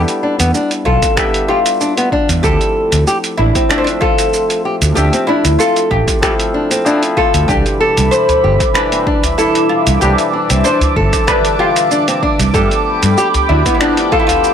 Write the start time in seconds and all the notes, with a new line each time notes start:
Already playing: G3 B3 D4 E4 G4 E5
0.08 closed hi-hat, cabasa
0.23 D4
0.40 E2 B3, closed hi-hat, cabasa
0.54 D4, cabasa
0.71 closed hi-hat, cabasa
0.85 B1 F4 A4, kick
1.02 kick, closed hi-hat, cabasa
1.16 G3 B3 D4 G4 E5, finger snap, kick, cabasa
1.34 closed hi-hat, cabasa
1.48 F4 G4
1.66 closed hi-hat, cabasa
1.81 D4, cabasa
1.98 B3, closed hi-hat, cabasa
2.12 D4, kick
2.29 E2, closed hi-hat, cabasa
2.42 D2 F3 A3 C4 E4 G4 A4, kick, cabasa
2.61 closed hi-hat, cabasa
2.92 D2, closed hi-hat, cabasa
3.07 G4, cabasa
3.24 closed hi-hat, cabasa
3.37 A1 D4 E4
3.55 C4, kick, closed hi-hat, cabasa
3.68 F3 A3 C4 D4 E5, finger snap, cabasa
3.78 C4
3.84 D4, closed hi-hat, cabasa
4.01 F4 A4, kick
4.18 closed hi-hat, cabasa
4.33 cabasa
4.50 closed hi-hat, cabasa
4.65 G4
4.82 D2, closed hi-hat, cabasa
4.94 D2 F3 A3 C4 D4 G4 E5, cabasa
5.13 C4, closed hi-hat, cabasa
5.27 D4 E4
5.45 D2, closed hi-hat, cabasa
5.59 F4 A4, cabasa
5.76 closed hi-hat, cabasa
5.91 A1 G4, kick
6.08 kick, closed hi-hat, cabasa
6.21 F3 A3 C4 E4 G4 A4, finger snap, kick, cabasa
6.40 closed hi-hat, cabasa
6.54 D4
6.71 C4, closed hi-hat, cabasa
6.85 F3 A3 C4 D4 E4, cabasa
7.03 closed hi-hat, cabasa
7.17 F4 A4, kick
7.34 D2, closed hi-hat, cabasa
7.47 C2 B2 E3 G3 D4 G4 E5 B5 D6, kick, cabasa
7.66 closed hi-hat, cabasa
7.80 A4
7.97 C2, closed hi-hat, cabasa
8.11 C5, cabasa
8.29 closed hi-hat, udu, cabasa
8.44 G1 G4
8.60 kick, closed hi-hat, cabasa
8.73 E3 G3 D4 B4, finger snap, cabasa
8.77 D4
8.92 C4, closed hi-hat, cabasa
9.07 D4, kick
9.23 closed hi-hat, udu, cabasa
9.38 E4 A4, cabasa
9.55 closed hi-hat, cabasa
9.69 F4
9.87 C2, closed hi-hat, cabasa
10.00 C2 E3 G3 D4 G4 C5 A5, cabasa
10.18 closed hi-hat, cabasa
10.33 D4
10.50 C2 C4, closed hi-hat, cabasa
10.64 D4 C5, cabasa
10.81 closed hi-hat, udu, cabasa
10.96 G1 A4, kick
11.13 kick, closed hi-hat, cabasa
11.26 D3 G3 D4 B4, finger snap, kick, cabasa
11.45 closed hi-hat, cabasa
11.59 F4 G4
11.76 closed hi-hat, cabasa
11.91 D4, cabasa
12.08 C4, closed hi-hat, cabasa
12.23 D4, kick
12.39 C2, closed hi-hat, cabasa
12.52 G2 F3 A3 B3 G4 A4 G5 B5, kick, cabasa
12.56 D4
12.71 closed hi-hat, cabasa
13.03 G2, closed hi-hat, cabasa
13.18 G4, cabasa
13.34 closed hi-hat, udu, cabasa
13.49 D2 D4 E4
13.66 B3, kick, closed hi-hat, cabasa
13.74 E4
13.79 F3 A3 B3 D4, finger snap, cabasa
13.97 closed hi-hat, cabasa
14.12 F4 A4, kick
14.20 E4
14.27 F4, closed hi-hat, udu, cabasa
14.44 cabasa